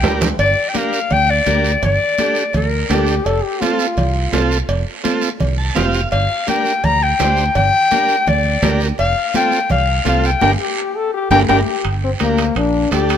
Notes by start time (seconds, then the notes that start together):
Already playing: G5
0.03 D2 D4 G4 A#4, low conga, low timbale, short guiro
0.21 low conga, low timbale, short guiro
0.39 G1 D5, cowbell, high conga, long guiro
0.69 G5
0.74 D4 G4 A#4 F5, cowbell, high conga, short guiro
0.93 short guiro
1.10 D2 G5, cowbell, high conga, low conga, long guiro
1.31 D5
1.46 D2 D4 G4 A#4, cowbell, high conga, short guiro
1.65 short guiro
1.82 G1 D5, cowbell, high conga, low conga, long guiro
2.18 D4 G4 A4, cowbell, high conga, short guiro
2.35 short guiro
2.53 D2 A#4, cowbell, high conga, low conga, long guiro
2.89 D2 D4 G4 A4, cowbell, high conga, low timbale, short guiro
3.07 short guiro
3.25 F1 A4, cowbell, high conga, long guiro
3.44 G4
3.61 C4 F4 A4, cowbell, high conga, short guiro
3.79 short guiro
3.97 C2, cowbell, high conga, low conga, long guiro
4.32 C2 C4 F4 A4, cowbell, high conga, low timbale, short guiro
4.51 short guiro
4.68 F1, cowbell, high conga, long guiro
5.04 C4 F4 A4, cowbell, high conga, short guiro
5.21 short guiro
5.40 C2, cowbell, high conga, low conga, long guiro
5.58 A5
5.75 F1 C4 F4 G4 F5, cowbell, high conga, low conga, low timbale, short guiro
5.93 short guiro
6.11 G1 F5, cowbell, high conga, long guiro
6.47 D4 G4 A#4 G5, cowbell, high conga, short guiro
6.65 short guiro
6.84 D2 A#5, cowbell, high conga, low conga, long guiro
7.03 G5
7.19 D2 D4 G4 C5, cowbell, high conga, low timbale, short guiro
7.37 short guiro
7.55 G1 G5, cowbell, high conga, low conga, long guiro
7.91 D4 G4 A#4, cowbell, high conga, short guiro
8.09 short guiro
8.27 D2 D5, cowbell, high conga, low conga, long guiro
8.62 D2 D4 G4 A#4, cowbell, high conga, low conga, low timbale, short guiro
8.80 short guiro
8.98 F1 F5, cowbell, high conga, long guiro
9.34 C4 F4 A4 G5, cowbell, high conga, short guiro
9.52 short guiro
9.70 C2 F5, cowbell, high conga, low conga, long guiro
10.05 C2 C4 F4 A4 F5, cowbell, high conga, short guiro
10.24 G5, short guiro
10.41 G1 D4 G4 A#4 G5, high conga, high timbale, long guiro
10.60 G4
10.96 A4
11.14 G4
11.30 G1 D4 G4 A#4 G5, high conga, high timbale, long guiro
11.42 A4
11.49 G1 D4 G4 A#4 G5, high conga, high timbale, long guiro
11.84 G1, high conga, high timbale, long guiro
12.04 C4
12.19 D2 A#3 D4 G4 A#4, high conga, high timbale, short guiro
12.37 high timbale, short guiro
12.55 A#1 D4, high conga, high timbale, long guiro
12.91 D2 D4 G4 A4, high conga, high timbale, low timbale, short guiro
13.09 high timbale, short guiro